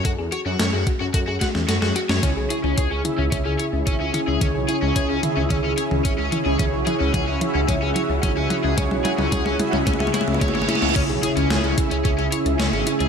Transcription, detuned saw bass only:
\new Staff \with { instrumentName = "Detuned saw bass" } { \clef bass \time 4/4 \key cis \minor \tempo 4 = 110 fis,16 e,16 r16 fis,16 fis,16 fis,16 r16 fis,16 fis,16 fis,16 r16 e,16 fis,16 fis,16 r16 fis,16 | cis,16 b,,16 r16 cis,16 cis,16 cis,16 r16 cis,16 cis,16 cis,16 r16 cis,16 gis,,16 cis,16 r16 cis,16 | cis,16 b,,16 r16 cis,16 cis,16 cis,16 r16 cis,16 cis,16 cis,16 r16 cis,16 gis,,16 cis,16 r16 cis,16 | cis,16 b,,16 r16 cis,16 cis,16 cis,16 r16 cis,16 cis,16 cis,16 r16 cis,16 gis,,16 cis,16 r16 cis,16 |
cis,16 b,,16 r16 cis,16 cis,16 cis,16 r16 cis,16 cis,16 cis,16 r16 cis,16 cis,16 gis,,16 r16 cis,16 | cis,16 b,,16 r16 cis,16 cis,16 cis,16 r16 cis,16 cis,16 cis,16 r16 cis,16 cis,16 gis,,16 r16 cis,16 | }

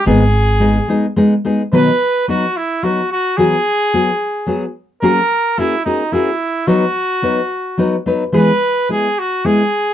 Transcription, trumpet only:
\new Staff \with { instrumentName = "Trumpet" } { \time 3/4 \key gis \minor \tempo 4 = 109 gis'2 r4 | \key b \major b'4 fis'8 e'8 fis'8 fis'8 | gis'2~ gis'8 r8 | ais'4 e'8 dis'8 e'4 |
fis'2~ fis'8 r8 | b'4 gis'8 fis'8 gis'4 | }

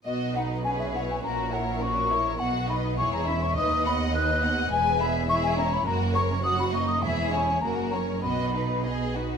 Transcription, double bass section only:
\new Staff \with { instrumentName = "Double bass section" } { \clef bass \time 2/4 \key b \major \tempo 4 = 103 b,,2 | ais,,2 | b,,4 e,,4 | dis,2 |
e,,2 | fis,,2 | e,,4 fis,,4 | b,,4. r8 | }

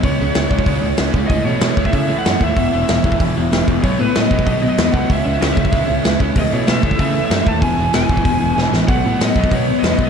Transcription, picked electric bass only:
\new Staff \with { instrumentName = "Picked electric bass" } { \clef bass \time 4/4 \key e \major \tempo 4 = 190 cis,8 cis,8 cis,8 cis,8 cis,8 cis,8 cis,8 cis,8 | cis,8 b,8 b,8 cis,8 cis4 fis,8 dis,8 | e,,8 e,,8 e,,8 e,,8 e,,8 e,,8 e,,8 e,,8 | b,,8 a,8 a,8 b,,8 b,4 e,8 c,8 |
cis,8 cis,8 cis,8 cis,8 cis,8 cis,8 cis,8 cis,8 | cis,8 b,8 b,8 cis,8 cis4 fis,8 dis,8 | e,,8 e,,8 e,,8 e,,8 e,,8 e,,8 e,,8 a,,8 | b,,8 a,8 a,8 b,,8 b,4 e,8 b,,8 | }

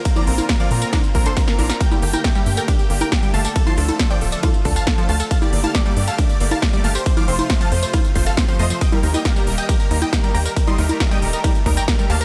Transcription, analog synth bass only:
\new Staff \with { instrumentName = "Analog synth bass" } { \clef bass \time 4/4 \key g \minor \tempo 4 = 137 r8 bes,,8 r8 bes,8 r8 bes,,8 r8 bes,,8 | r8 g,,8 r8 g,8 r8 g,,8 r8 g,,8 | r8 d,8 r8 d,,8 r8 d,8 r8 d,8 | r8 g,,8 r8 g,8 r8 g,,8 r8 g,,8 |
r8 f,,8 r8 f,8 r8 f,,8 r8 f,8 | r8 ees,8 r8 ees,,8 r8 ees,8 r8 ees,8 | r8 ees,8 r8 ees,,8 r8 ees,8 r8 ees,8 | }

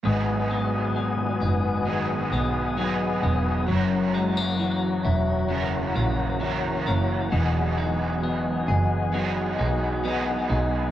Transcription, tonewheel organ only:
\new Staff \with { instrumentName = "Tonewheel organ" } { \time 4/4 \key gis \minor \tempo 4 = 66 << { <b' gis'' dis'''>1 | <cis'' ais''>1 | <dis'' gis''>1 | } \\ { fis''1~ | fis''1~ | fis''1 | } >> }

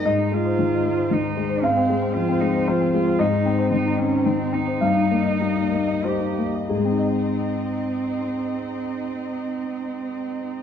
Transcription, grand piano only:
\new Staff \with { instrumentName = "Grand piano" } { \time 3/4 \key aes \major \tempo 4 = 105 << { ees''2. | f''2 c''4 | ees''2. | f''2 c''4 |
<aes, aes c' ees' aes' ees''>2.~ | <aes, aes c' ees' aes' ees''>2. | } \\ { aes,16 ees'16 aes16 c''16 ees16 ees'16 aes16 c''16 ees16 ees'16 aes16 c''16 | aes,16 c'16 aes16 c''16 f16 c'16 aes16 c''16 f16 c'16 aes16 c''16 | aes,16 ees'16 c'16 c''16 ees16 ees'16 c'16 c''16 ees16 ees'16 c'16 c''16 | g,16 ees'16 bes16 ees''16 g16 ees'16 bes16 ees''16 g16 ees'16 bes16 ees''16 |
r2. | r2. | } >> }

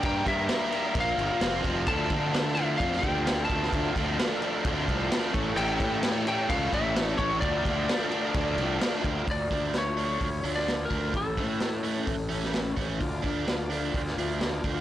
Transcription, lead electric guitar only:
\new Staff \with { instrumentName = "Lead electric guitar" } { \time 4/4 \key d \minor \tempo 4 = 130 g''8 e''4. f''4. r8 | a''4. e''8 f''8 g''4 a''8~ | a''8 r2. r8 | g''4. g''8 f''8 e''4 cis''8 |
d''2. r4 | d''4 cis''4~ \tuplet 3/2 { cis''4 d''8~ d''8 bes'4 } | a'2.~ a'8 r8 | r1 | }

